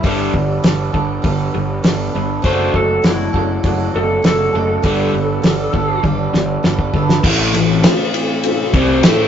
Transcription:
0.03 0.27 G1 medium
0.03 0.32 G2 medium
0.03 0.32 D3 medium
0.03 0.61 G3 medium
0.03 0.33 G3 medium
0.03 0.64 B3 medium
0.03 0.63 D4 medium
0.03 0.65 A4 medium
0.03 kick loud
0.03 open hi-hat soft
0.34 0.57 G1 medium
0.34 0.61 G2 medium
0.34 0.61 D3 medium
0.34 kick medium
0.62 0.87 G1 medium
0.62 0.91 G2 medium
0.62 0.91 D3 medium
0.62 0.93 G3 medium
0.62 0.93 B3 medium
0.62 0.94 D4 medium
0.62 0.91 A4 medium
0.62 snare loud
0.62 open hi-hat soft
0.93 1.17 G1 medium
0.93 1.21 G2 medium
0.93 1.21 D3 medium
0.93 1.23 B3 soft
0.93 1.22 D4 soft
0.93 1.23 A4 medium
0.93 kick medium
1.22 1.47 G1 medium
1.22 1.51 G2 medium
1.22 1.51 D3 medium
1.22 1.81 G3 medium
1.22 1.83 B3 medium
1.22 1.83 D4 medium
1.22 1.85 A4 medium
1.22 kick medium
1.22 open hi-hat soft
1.54 1.77 G1 medium
1.54 1.81 G2 medium
1.54 1.81 D3 medium
1.83 2.07 G1 medium
1.83 2.12 G2 medium
1.83 2.12 D3 medium
1.83 2.13 G3 medium
1.83 2.13 B3 medium
1.83 2.14 D4 medium
1.83 2.12 A4 medium
1.83 snare loud
1.83 open hi-hat medium
2.13 2.38 G1 medium
2.13 2.42 G2 medium
2.13 2.42 D3 medium
2.13 2.43 B3 soft
2.13 2.42 D4 soft
2.13 2.44 A4 medium
2.42 2.67 F#1 medium
2.42 3.01 F#3 medium
2.42 2.73 F#3 medium
2.42 2.73 A3 medium
2.42 3.03 D4 medium
2.42 3.03 F#4 medium
2.42 3.05 A4 loud
2.42 2.74 C5 loud
2.42 kick loud
2.42 open hi-hat soft
2.46 2.73 D4 medium
2.74 2.97 F#1 medium
2.74 3.02 F#3 medium
2.74 3.02 A3 medium
2.74 3.04 A4 medium
2.74 kick medium
3.02 3.27 F#1 medium
3.02 3.33 F#3 medium
3.02 3.32 F#3 medium
3.02 3.32 A3 medium
3.02 3.34 D4 medium
3.02 3.92 E4 medium
3.02 3.33 F#4 medium
3.02 3.32 A4 medium
3.02 snare loud
3.02 open hi-hat soft
3.33 3.57 F#1 medium
3.33 3.62 F#3 medium
3.33 3.62 A3 medium
3.33 3.63 D4 soft
3.33 3.64 F#4 soft
3.33 3.64 A4 medium
3.33 kick medium
3.63 3.87 F#1 medium
3.63 4.21 F#3 medium
3.63 3.92 F#3 medium
3.63 3.92 A3 medium
3.63 4.23 D4 medium
3.63 4.23 F#4 medium
3.63 4.25 A4 medium
3.63 kick medium
3.63 open hi-hat soft
3.94 4.17 F#1 medium
3.94 4.22 F#3 medium
3.94 4.22 A3 medium
3.94 4.24 A4 medium
4.22 4.47 F#1 medium
4.22 4.53 F#3 medium
4.22 4.52 F#3 medium
4.22 4.52 A3 medium
4.22 4.54 D4 medium
4.22 4.53 F#4 medium
4.22 4.52 A4 medium
4.22 6.01 A4 medium
4.22 snare loud
4.22 open hi-hat soft
4.53 4.77 F#1 medium
4.53 4.82 F#3 medium
4.53 4.82 A3 medium
4.53 4.82 D4 soft
4.53 4.83 F#4 soft
4.53 4.83 A4 medium
4.82 5.07 G1 medium
4.82 5.13 G2 medium
4.82 5.13 D3 medium
4.82 5.41 G3 medium
4.82 5.13 G3 loud
4.82 5.43 B3 medium
4.82 5.42 D4 medium
4.82 5.44 A4 medium
4.82 kick loud
4.82 open hi-hat soft
5.14 5.37 G1 medium
5.14 5.41 G2 medium
5.14 5.41 D3 medium
5.42 5.67 G1 medium
5.42 5.71 G2 medium
5.42 5.72 D3 medium
5.42 5.73 G3 medium
5.42 5.73 B3 medium
5.42 5.74 D4 medium
5.42 5.71 A4 medium
5.42 snare loud
5.42 open hi-hat soft
5.73 5.97 G1 medium
5.73 6.01 G2 medium
5.73 6.01 D3 medium
5.73 6.04 B3 medium
5.73 6.04 D4 soft
5.73 6.03 A4 medium
5.73 kick medium
6.03 6.27 G1 medium
6.03 6.31 G2 medium
6.03 6.31 D3 medium
6.03 6.62 G3 medium
6.03 6.64 B3 medium
6.03 6.62 D4 medium
6.03 6.64 A4 medium
6.03 kick medium
6.03 high tom soft
6.33 6.57 G1 medium
6.33 6.61 G2 medium
6.33 6.61 D3 medium
6.33 snare medium
6.63 6.87 G1 medium
6.63 6.91 G2 medium
6.63 6.91 D3 medium
6.63 6.93 G3 medium
6.63 6.94 B3 medium
6.63 6.94 D4 medium
6.63 6.92 A4 medium
6.63 snare medium
6.79 kick medium
6.93 7.17 G1 medium
6.93 7.21 G2 medium
6.93 7.21 D3 medium
6.93 7.25 B3 soft
6.93 7.25 D4 soft
6.93 7.24 A4 medium
6.93 kick medium
7.09 snare medium
7.24 7.52 A1 medium
7.24 7.53 A2 loud
7.24 7.53 E3 loud
7.24 7.53 A3 loud
7.24 9.28 A3 medium
7.24 9.28 C4 medium
7.24 9.28 E4 medium
7.24 9.28 A4 medium
7.24 kick loud
7.24 crash loud
7.54 7.82 A1 medium
7.54 7.78 A2 medium
7.54 7.78 E3 medium
7.54 ride medium
7.83 snare loud
7.83 ride loud
7.83 tambourine loud
8.14 ride medium
8.43 ride medium
8.73 9.01 C2 medium
8.73 9.03 C3 medium
8.73 9.03 G3 medium
8.73 9.04 C4 loud
8.73 kick loud
8.73 ride medium
9.03 9.28 A2 loud
9.03 9.28 A3 medium
9.03 9.28 E4 medium
9.03 9.28 A4 medium
9.03 snare loud
9.03 ride loud
9.03 tambourine loud

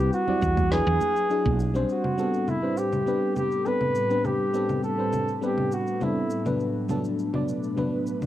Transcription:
0.00 0.24 G3 medium
0.00 0.24 C4 medium
0.00 0.24 E4 medium
0.00 0.25 B4 loud
0.13 0.73 F#4 loud
0.13 shaker soft
0.27 0.68 G3 medium
0.27 0.68 C4 medium
0.27 0.69 E4 medium
0.27 0.69 D5 medium
0.27 low conga medium
0.41 0.81 E2 medium
0.41 kick medium
0.41 high bongo medium
0.41 shaker medium
0.57 kick medium
0.57 high conga medium
0.57 shaker soft
0.71 1.27 F#3 medium
0.71 1.27 D4 medium
0.71 1.27 E4 medium
0.71 1.60 G#4 loud
0.71 1.27 B4 loud
0.71 kick medium
0.71 snare medium
0.71 shaker soft
0.87 0.97 E2 loud
1.01 high conga medium
1.01 low conga medium
1.01 shaker medium
1.16 shaker soft
1.30 1.71 F#3 medium
1.30 1.71 D4 medium
1.30 1.72 E4 medium
1.30 1.72 G#4 medium
1.30 shaker soft
1.46 1.84 B1 loud
1.46 kick medium
1.46 high conga medium
1.59 shaker medium
1.74 2.15 G3 medium
1.74 2.15 C4 medium
1.74 2.15 D4 medium
1.74 2.16 C5 loud
1.74 high bongo medium
1.74 shaker soft
1.89 6.56 A2 medium
1.89 6.56 G3 medium
1.89 8.26 D4 medium
1.89 2.50 F#4 medium
1.89 6.56 A4 medium
1.89 shaker soft
2.04 low conga medium
2.17 2.59 G3 medium
2.17 2.59 B3 medium
2.17 2.60 C4 medium
2.17 2.60 D4 medium
2.17 2.60 A4 medium
2.17 shaker medium
2.34 shaker soft
2.48 2.79 E4 medium
2.48 low conga medium
2.48 shaker soft
2.62 3.03 G3 medium
2.62 3.03 C4 medium
2.62 3.04 D4 medium
2.62 3.03 B4 medium
2.62 3.04 C5 medium
2.77 3.37 G4 medium
2.77 shaker medium
2.93 low conga medium
2.93 shaker soft
3.06 3.62 G3 medium
3.06 3.62 B3 medium
3.06 3.62 C4 medium
3.06 3.63 D4 medium
3.06 3.63 B4 medium
3.06 shaker soft
3.36 3.68 G4 medium
3.36 low conga medium
3.36 shaker medium
3.51 shaker soft
3.65 4.06 G3 medium
3.65 4.07 B3 medium
3.65 4.07 C4 medium
3.65 4.07 D4 medium
3.65 4.07 A4 medium
3.65 4.27 B4 loud
3.65 shaker soft
3.81 low conga medium
3.95 shaker medium
4.09 4.50 G3 medium
4.09 4.50 B3 medium
4.09 4.51 C4 medium
4.09 4.51 D4 medium
4.09 4.51 B4 loud
4.09 shaker soft
4.25 4.83 G4 medium
4.25 low conga medium
4.25 shaker soft
4.53 4.95 G3 medium
4.53 4.95 B3 medium
4.53 4.95 C4 medium
4.53 4.95 D4 medium
4.53 4.96 A4 medium
4.53 shaker medium
4.69 low conga medium
4.69 shaker soft
4.84 5.38 A4 medium
4.84 shaker soft
4.98 5.38 G3 medium
4.98 5.39 C4 medium
4.98 5.39 D4 medium
4.98 5.39 B4 medium
4.98 5.39 C5 medium
5.13 low conga medium
5.13 shaker medium
5.28 shaker soft
5.41 5.97 G3 medium
5.41 5.97 B3 medium
5.41 5.98 C4 medium
5.41 5.98 D4 medium
5.41 5.75 G4 medium
5.41 5.98 B4 medium
5.41 shaker soft
5.58 low conga medium
5.72 6.05 F#4 medium
5.72 shaker medium
5.87 shaker soft
6.00 6.42 G3 medium
6.00 6.42 B3 medium
6.00 6.42 C4 medium
6.00 6.42 D4 medium
6.00 6.47 E4 medium
6.00 6.43 A4 medium
6.00 low conga medium
6.00 shaker soft
6.30 shaker medium
6.45 6.85 F#3 medium
6.45 6.86 B3 medium
6.45 6.86 D4 medium
6.45 6.87 B4 medium
6.45 low conga medium
6.45 shaker soft
6.60 8.26 B2 medium
6.60 8.26 A3 medium
6.60 8.26 B4 medium
6.60 shaker soft
6.89 7.30 F#3 medium
6.89 7.30 B3 medium
6.89 7.31 D4 medium
6.89 7.31 A4 loud
6.89 low conga medium
6.89 shaker medium
7.04 shaker soft
7.19 shaker soft
7.33 7.74 F#3 medium
7.33 7.74 B3 medium
7.33 7.75 D4 medium
7.33 7.75 D5 medium
7.33 low conga medium
7.48 shaker medium
7.63 shaker soft
7.77 8.26 F#3 medium
7.77 8.26 B3 medium
7.77 8.26 D4 medium
7.77 8.26 B4 medium
7.77 low conga medium
7.77 shaker soft
8.07 shaker medium
8.22 low conga medium
8.22 shaker soft

